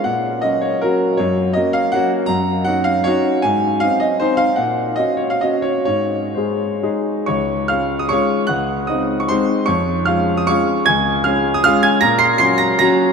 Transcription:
\new Staff \with { instrumentName = "Grand piano" } { \time 3/4 \key fis \major \tempo 4 = 154 << { fis''4 dis''8 cis''8 ais'4 | cis''4 dis''8 eis''8 fis''8 r8 | \key des \major bes''4 ges''8 f''8 des''4 | aes''4 f''8 ees''8 c''8 f''8 |
ges''4 ees''8 des''16 f''16 ees''8 des''8 | des''4 c''4. r8 | <des'' des'''>4 <f'' f'''>8. ees'''16 <des'' des'''>4 | <ges'' ges'''>4 <ees'' ees'''>8. des'''16 <c'' c'''>4 |
<des'' des'''>4 <f'' f'''>8. ees'''16 <des'' des'''>4 | <aes'' aes'''>4 <f'' f'''>8. ees'''16 <f'' f'''>8 <aes'' aes'''>8 | <bes'' bes'''>8 <c''' c''''>8 <c''' c''''>8 <bes'' bes'''>8 <bes'' bes'''>4 | } \\ { ais,4 <fis cis' fis'>4 <fis cis' fis'>4 | fis,4 <ais cis' fis'>4 <ais cis' fis'>4 | ges,4 <des' ees' ges'>4 <des' ees' ges'>4 | aes,4 <c' ees'>4 <c' ees'>4 |
bes,4 <des' ges'>4 <des' ges'>4 | aes,4 <aes ees' aes'>4 <aes ees' aes'>4 | des,4 <aes des' f'>4 <aes des' f'>4 | des,4 <aes c' ees'>4 <aes c' ees'>4 |
f,4 <aes des' f'>4 <aes des' f'>4 | des,4 <aes des' f'>4 <aes des' f'>4 | bes,4 <ges des' ges'>4 <ges des' ges'>4 | } >> }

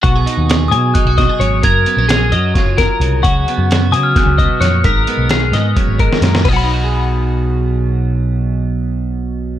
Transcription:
<<
  \new Staff \with { instrumentName = "Glockenspiel" } { \time 7/8 \key b \lydian \tempo 4 = 131 cis'''4. dis'''8 fis'''4 r8 | gis'''2. r8 | cis'''4. dis'''16 eis'''16 fis'''4 fis'''8 | b'''2~ b'''8 r4 |
r2. r8 | r2. r8 | }
  \new Staff \with { instrumentName = "Clean electric guitar" } { \time 7/8 \key b \lydian fis''4 r8 gis''4 dis''8 cis''8 | ais'4 gis'8 dis''8 cis''8 ais'4 | fis''4 r8 gis''4 dis''8 cis''8 | ais'4 gis'8 dis''8 cis''8 ais'4 |
<b' dis'' fis'' b''>2.~ <b' dis'' fis'' b''>8~ | <b' dis'' fis'' b''>2.~ <b' dis'' fis'' b''>8 | }
  \new Staff \with { instrumentName = "Clean electric guitar" } { \time 7/8 \key b \lydian << { fis'16 gis'16 dis'8 gis'4 dis'16 fis'16 fis'16 gis'8. | ais'8 b16 cis'16 ais'4 eis'8 ais'4 | fis'8 b8 fis'2~ fis'8 | ais'8 b8 ais'2~ ais'8 |
<fis dis' fis' gis'>2.~ <fis dis' fis' gis'>8~ | <fis dis' fis' gis'>2.~ <fis dis' fis' gis'>8 | } \\ { b,4. fis4. fis,8 | fis,4. fis4. cis8 | cis4. fis8 cis8 b,8 ais,8 | gis,4. gis8 fis,8 gis,8 ais,8 |
b,2.~ b,8~ | b,2.~ b,8 | } >> }
  \new Staff \with { instrumentName = "Picked electric bass" } { \clef bass \time 7/8 \key b \lydian b,,8 r16 dis,8. b,8 r16 b,,8 r16 gis,,8 | fis,,8 r16 ais,,8. fis,8 r16 fis,,8 r16 c,8 | cis,8 r16 fis,8. cis8 r16 cis,8 r16 eis,8 | gis,,8 r16 b,,8. gis,8 r16 gis,,8 r16 fis,8 |
b,,2.~ b,,8~ | b,,2.~ b,,8 | }
  \new DrumStaff \with { instrumentName = "Drums" } \drummode { \time 7/8 <hh bd>8 hh8 <hh sn>8 hh8 <hh bd>8 <hh bd sn>8 hh8 | <hh bd>8 hh8 <hh sn>8 hh8 <hh bd sn>8 <hh bd sn>8 hh8 | <hh bd>8 hh8 <hh sn>8 hh8 <hh bd sn>8 <hh bd>8 <hh sn>8 | <hh bd>8 hh8 <hh sn>8 <hh sn>8 <hh bd>8 <hh bd>16 sn16 <hh sn>16 sn16 |
<cymc bd>4 r4 r4. | r4 r4 r4. | }
>>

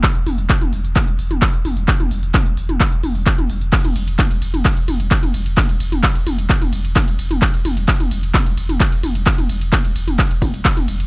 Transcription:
<<
  \new Staff \with { instrumentName = "Sub bass" } { \clef bass \time 4/4 \tempo 4 = 130 r16 e,,16 e,,16 e,,16 r16 e,,16 e,,16 e,,16 r16 e,,16 e,,16 e,,16 r16 e,,16 e,,16 e,,16 | r16 e,,16 e,,16 e,,16 r16 e,,16 e,,16 e,,16 r16 e,,16 e,,16 e,,16 r16 e,,16 e,,16 e,,16 | r16 e,,16 e,,16 e,,16 r16 e,,16 e,,16 e,,16 r16 e,,16 e,,16 e,,16 r16 e,,16 e,,16 e,,16 | r16 e,,16 e,,16 e,,16 r16 e,,16 e,,16 e,,16 r16 e,,16 e,,16 e,,16 r16 e,,16 e,,16 e,,16 |
r16 e,,16 e,,16 e,,16 r16 e,,16 e,,16 e,,16 r16 e,,16 e,,16 e,,16 r16 e,,16 e,,16 e,,16 | r16 e,,16 e,,16 e,,16 r16 e,,16 e,,16 e,,16 r16 e,,16 e,,16 e,,16 r16 e,,16 e,,16 e,,16 | }
  \new DrumStaff \with { instrumentName = "Drums" } \drummode { \time 4/4 <hc hh bd>16 hh16 <hho toml>16 hh16 <hc hh bd>16 <hh toml>16 hho16 hh16 <hc hh bd toml>16 hh16 hho16 <hh toml>16 <hc hh bd>16 hh16 <hho toml>16 hh16 | <hc hh bd>16 <hh toml>16 hho16 hh16 <hc hh bd toml>16 hh16 hho16 <hh toml>16 <hc hh bd>16 hh16 <hho toml>16 hho16 <hc hh bd>16 <hh toml>16 hho16 hh16 | <hc hh bd cymr>16 <hh cymr toml>16 <hho cymr>16 <hh cymr>16 <hc hh bd cymr toml>16 <hh cymr>16 <hho cymr>16 <hh cymr toml>16 <hc hh bd cymr>16 <hh cymr>16 <hho cymr toml>16 <hh cymr>16 <hc hh bd cymr>16 <hh cymr toml>16 <hho cymr>16 <hh cymr>16 | <hc hh bd cymr toml>16 <hh cymr>16 <hho cymr>16 <hh cymr toml>16 <hc hh bd cymr>16 <hh cymr>16 <hho cymr toml>16 <hh cymr>16 <hc hh bd cymr>16 <hh cymr toml>16 <hho cymr>16 <hho cymr>16 <hc hh bd cymr toml>16 <hh cymr>16 <hho cymr>16 <hh cymr toml>16 |
<hc hh bd cymr>16 <hh cymr>16 <hho cymr toml>16 <hh cymr>16 <hc hh bd cymr>16 <hh cymr toml>16 <hho cymr>16 <hh cymr>16 <hc hh bd cymr toml>16 <hh cymr>16 <hho cymr>16 <hh cymr toml>16 <hc hh bd cymr>16 <hh cymr>16 <hho cymr toml>16 <hh cymr>16 | <hc hh bd cymr>16 <hh cymr toml>16 <hho cymr>16 <hh cymr>16 <hc hh bd cymr toml>16 <hh cymr>16 <hho cymr>16 <hh cymr toml>16 <hc hh bd cymr>16 <hh cymr>16 <hho bd cymr toml>16 <hho cymr>16 <hc hh bd cymr>16 <hh cymr toml>16 <hho cymr>16 <hh cymr>16 | }
>>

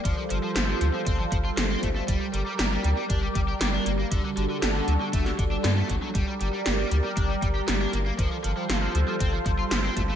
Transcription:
<<
  \new Staff \with { instrumentName = "Analog synth pad" } { \time 4/4 \key g \minor \tempo 4 = 118 << { <f' a' c''>1 | <g' bes' d''>1 | <d' fis' a'>1 | <g' bes' d''>1 |
<f' a' c''>1 | } \\ { g1~ | g1~ | g1~ | g1 |
g1 | } >> }
  \new Staff \with { instrumentName = "Overdriven electric guitar" } { \clef bass \time 4/4 \key g \minor f16 f16 f16 f16 f16 f16 f16 f16 c'16 f16 f16 f'16 f16 c'16 a16 a16 | g16 g16 g16 g16 g16 g16 g16 g16 d'16 g16 g16 g'16 g16 d'16 bes16 bes16 | d16 d16 d16 d16 d16 d16 d16 d16 a16 d16 d16 d'16 d16 a16 fis16 fis16 | g16 g16 g16 g16 g16 g16 g16 g16 d'16 g16 g16 g'16 g16 d'16 bes16 bes16 |
f16 f16 f16 f16 f16 f16 f16 f16 c'16 f16 f16 f'16 f16 c'16 a16 a16 | }
  \new Staff \with { instrumentName = "Analog synth bass" } { \clef bass \time 4/4 \key g \minor g,,8 g,,8 g,,8 d,8 g,,8 g,,8 g,,8 g,,8 | g,,8 g,,8 g,,8 d,8 g,,8 g,,8 g,,8 g,,8 | g,,8 g,,8 g,,8 d,8 g,,8 g,,8 g,8 g,,8 | g,,8 g,,8 g,,8 d,8 g,,8 g,,8 g,,8 g,,8 |
g,,8 g,,8 g,,8 d,8 g,,8 g,,8 g,,8 g,,8 | }
  \new DrumStaff \with { instrumentName = "Drums" } \drummode { \time 4/4 <hh bd>8 hh8 <hh sn>8 hh8 <hh bd>8 <hh bd>8 <hh sn>8 <hh bd>8 | <hh bd>8 hh8 <hh sn>8 hh8 <hh bd>8 <hh bd>8 <hh sn>8 hh8 | <hh bd>8 hh8 <hh sn>8 hh8 <hh bd>16 sn16 <hh bd>8 <hh sn>8 <hh bd>8 | <hh bd>8 hh8 <hh sn>8 hh8 <hh bd>8 <hh bd>8 <hh sn>8 hh8 |
<hh bd>8 hh8 <hh sn>8 hh8 <hh bd>8 <hh bd>8 <hh sn>8 <hh bd>8 | }
>>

